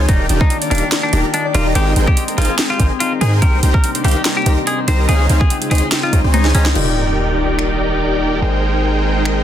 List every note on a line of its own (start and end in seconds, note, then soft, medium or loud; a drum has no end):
0.00 0.15 D#4 medium
0.00 1.98 F4 medium
0.00 0.26 G#4 medium
0.00 0.15 C#5 loud
0.00 0.15 D#5 medium
0.09 0.28 D#1 loud
0.09 1.74 D#3 medium
0.09 1.74 A#3 medium
0.09 1.74 D4 medium
0.09 0.29 D4 loud
0.09 0.27 D#4 medium
0.09 0.25 D#4 loud
0.09 1.74 F4 medium
0.09 0.27 G4 medium
0.09 0.27 A#4 medium
0.09 0.27 D5 medium
0.09 0.27 G5 loud
0.09 3.39 G5 medium
0.09 kick loud
0.09 closed hi-hat medium
0.20 1.03 G4 medium
0.29 0.40 D#1 medium
0.29 0.50 D4 loud
0.29 0.42 D#4 medium
0.29 0.42 G4 medium
0.29 0.42 A#4 medium
0.29 0.42 D5 medium
0.29 0.42 G5 loud
0.29 closed hi-hat medium
0.41 0.56 D#4 medium
0.41 kick loud
0.50 0.71 D4 medium
0.50 closed hi-hat medium
0.62 1.40 D5 medium
0.62 closed hi-hat medium
0.71 0.82 D#1 medium
0.71 0.92 D4 medium
0.71 0.88 D4 medium
0.71 0.84 D#4 medium
0.71 0.84 G4 medium
0.71 0.84 A#4 medium
0.71 0.84 D5 medium
0.71 0.84 F5 loud
0.71 closed hi-hat soft
0.75 closed hi-hat medium
0.78 closed hi-hat medium
0.82 1.24 A#4 loud
0.92 1.12 D4 medium
0.92 snare loud
0.92 closed hi-hat medium
1.03 1.19 D4 medium
1.03 1.86 G4 medium
1.13 1.23 D#1 loud
1.13 1.40 D4 loud
1.13 1.25 D#4 medium
1.13 1.25 G4 medium
1.13 1.25 A#4 medium
1.13 1.25 D5 medium
1.13 1.25 A#5 medium
1.13 closed hi-hat medium
1.24 2.28 A#4 medium
1.34 1.45 D4 medium
1.34 1.51 D#4 medium
1.34 closed hi-hat medium
1.45 1.72 D5 medium
1.54 1.74 D#1 medium
1.54 1.72 D4 medium
1.54 1.73 D#4 medium
1.54 1.66 F4 medium
1.54 1.73 G4 medium
1.54 1.73 A#4 medium
1.54 1.73 D5 medium
1.54 1.73 A#5 medium
1.54 closed hi-hat medium
1.66 3.44 D#5 medium
1.75 1.94 G#1 loud
1.75 3.40 G#3 medium
1.75 1.96 C4 loud
1.75 3.40 C4 medium
1.75 1.94 D#4 medium
1.75 1.92 G4 loud
1.75 1.94 G#4 medium
1.75 1.94 A#4 medium
1.75 1.94 C5 medium
1.75 1.94 G5 loud
1.75 closed hi-hat medium
1.87 2.13 G4 medium
1.96 2.07 G#1 medium
1.96 2.17 C4 loud
1.96 2.09 D#4 medium
1.96 2.09 G#4 medium
1.96 2.09 A#4 medium
1.96 2.09 C5 medium
1.96 2.09 G5 loud
1.96 closed hi-hat medium
2.08 2.23 G4 medium
2.08 2.49 G#4 medium
2.08 kick loud
2.17 2.37 C4 medium
2.17 closed hi-hat medium
2.28 3.11 A#4 medium
2.28 closed hi-hat medium
2.38 2.48 G#1 loud
2.38 2.58 C4 medium
2.38 2.50 D#4 medium
2.38 2.54 F4 medium
2.38 2.50 G#4 medium
2.38 2.50 A#4 medium
2.38 2.50 C5 medium
2.38 2.50 F5 loud
2.38 closed hi-hat soft
2.42 closed hi-hat medium
2.45 closed hi-hat medium
2.49 2.76 G#4 loud
2.59 2.79 C4 medium
2.59 snare loud
2.59 closed hi-hat medium
2.70 2.86 F4 medium
2.70 2.97 G4 medium
2.79 2.90 G#1 loud
2.79 3.21 C4 loud
2.79 2.92 D#4 medium
2.79 2.92 G#4 medium
2.79 2.92 A#4 medium
2.79 2.92 C5 medium
2.79 2.92 G#5 medium
2.79 kick medium
2.79 closed hi-hat medium
2.91 3.59 G#4 medium
3.00 4.67 D#4 medium
3.00 3.12 F4 medium
3.00 closed hi-hat medium
3.12 3.74 A#4 medium
3.21 3.44 G#2 loud
3.21 3.42 C4 medium
3.21 3.40 D#4 medium
3.21 3.33 G#4 medium
3.21 3.40 G#4 medium
3.21 3.40 A#4 medium
3.21 3.40 C5 medium
3.21 3.40 G#5 medium
3.21 closed hi-hat medium
3.33 3.95 C5 medium
3.42 3.61 C2 loud
3.42 5.07 C3 medium
3.42 5.07 G3 medium
3.42 5.07 A#3 medium
3.42 3.62 C4 loud
3.42 5.07 D4 medium
3.42 6.72 D#4 medium
3.42 3.61 D#4 medium
3.42 3.61 G4 medium
3.42 3.58 A#4 loud
3.42 3.61 G5 medium
3.42 kick loud
3.42 closed hi-hat medium
3.53 4.36 G4 medium
3.63 3.73 C2 loud
3.63 3.83 C4 loud
3.63 3.75 D#4 medium
3.63 3.75 G4 medium
3.63 3.75 A#4 medium
3.63 3.75 C5 medium
3.63 3.75 G5 medium
3.63 closed hi-hat medium
3.74 3.90 A#4 medium
3.74 kick loud
3.84 4.04 C4 medium
3.84 closed hi-hat medium
3.95 4.78 C5 medium
3.95 closed hi-hat medium
4.04 4.15 C2 loud
4.04 4.25 C4 medium
4.04 4.17 D#4 medium
4.04 4.17 G4 medium
4.04 4.21 G4 medium
4.04 4.17 A#4 medium
4.04 4.17 C5 medium
4.04 4.17 F5 loud
4.04 closed hi-hat medium
4.08 closed hi-hat medium
4.11 closed hi-hat medium
4.16 4.57 A#4 loud
4.25 4.46 C4 medium
4.25 snare loud
4.25 closed hi-hat medium
4.37 5.68 G4 medium
4.37 4.52 G4 loud
4.46 4.57 C2 loud
4.46 4.88 C4 loud
4.46 4.59 D#4 medium
4.46 4.59 G4 medium
4.46 4.59 A#4 medium
4.46 4.59 C5 medium
4.46 4.59 A#5 loud
4.46 closed hi-hat medium
4.58 6.70 A#4 medium
4.67 5.20 D#4 medium
4.67 4.79 G#4 medium
4.67 closed hi-hat medium
4.78 6.40 C5 medium
4.88 5.07 C2 loud
4.88 5.08 C4 medium
4.88 5.06 D#4 medium
4.88 5.07 G4 medium
4.88 5.07 A#4 medium
4.88 5.00 C5 medium
4.88 5.07 C5 medium
4.88 5.07 A#5 medium
4.88 closed hi-hat medium
4.99 6.78 D#5 medium
5.09 5.28 C#2 loud
5.09 6.74 C#3 medium
5.09 6.74 G#3 medium
5.09 5.29 C4 loud
5.09 6.74 C4 medium
5.09 5.27 D#4 medium
5.09 6.74 F4 medium
5.09 5.25 G#4 loud
5.09 5.27 G#4 medium
5.09 5.27 C5 medium
5.09 5.27 C#5 medium
5.09 5.27 F5 loud
5.09 closed hi-hat medium
5.20 6.03 D#4 medium
5.30 5.40 C#2 loud
5.30 5.50 C4 loud
5.30 5.42 D#4 medium
5.30 5.42 G#4 medium
5.30 5.42 C5 medium
5.30 5.42 C#5 medium
5.30 5.42 F5 medium
5.30 closed hi-hat medium
5.41 5.82 F4 medium
5.41 5.57 G#4 loud
5.41 kick loud
5.50 5.71 C4 medium
5.50 closed hi-hat medium
5.62 6.45 G#4 medium
5.62 closed hi-hat medium
5.71 5.82 C#2 loud
5.71 5.92 C4 medium
5.71 5.84 D#4 medium
5.71 5.88 G#4 medium
5.71 5.84 G#4 medium
5.71 5.84 C5 medium
5.71 5.84 C#5 medium
5.71 5.84 D#5 loud
5.71 closed hi-hat soft
5.75 closed hi-hat medium
5.78 closed hi-hat medium
5.83 6.24 F4 loud
5.92 6.12 C4 medium
5.92 snare loud
5.92 closed hi-hat medium
6.03 8.74 D#4 medium
6.03 6.19 F4 medium
6.13 6.22 C#2 loud
6.13 6.40 C4 loud
6.13 6.22 D#4 loud
6.13 6.22 G#4 medium
6.13 6.22 C5 medium
6.13 6.22 C#5 medium
6.13 6.22 A#5 loud
6.13 kick medium
6.13 closed hi-hat medium
6.24 6.53 C#2 loud
6.24 6.52 D#4 loud
6.24 8.76 F4 medium
6.24 6.52 G#4 medium
6.24 6.52 C5 medium
6.24 6.52 C#5 medium
6.24 6.52 G#5 loud
6.34 6.61 C#4 medium
6.34 6.45 D#4 medium
6.34 closed hi-hat medium
6.34 high tom medium
6.45 8.72 G#4 medium
6.45 snare medium
6.55 6.74 C#2 loud
6.55 9.44 C4 medium
6.55 6.66 C#4 medium
6.55 6.67 D#4 medium
6.55 6.67 G#4 medium
6.55 6.67 C5 medium
6.55 6.67 C#5 medium
6.55 6.67 A#5 loud
6.55 closed hi-hat medium
6.66 8.64 C5 medium
6.66 snare medium
6.73 8.40 D#1 medium
6.73 8.39 D#3 medium
6.73 8.40 D#3 medium
6.73 8.40 A#3 medium
6.73 8.39 D#4 medium
6.73 8.40 D#4 medium
6.73 8.40 F4 medium
6.73 8.40 G4 medium
6.73 8.40 A#4 medium
6.73 8.40 D5 medium
6.73 8.41 D5 medium
6.73 8.40 G5 medium
6.73 crash medium
6.73 sub drop medium
7.59 finger snap medium
8.40 9.44 G#1 medium
8.40 9.44 G#3 medium
8.40 9.44 C4 medium
8.40 9.44 D#4 medium
8.40 9.44 G#4 medium
8.40 9.44 A#4 medium
8.40 9.44 C5 medium
8.40 9.44 G5 medium
8.44 9.44 C5 medium
9.25 finger snap medium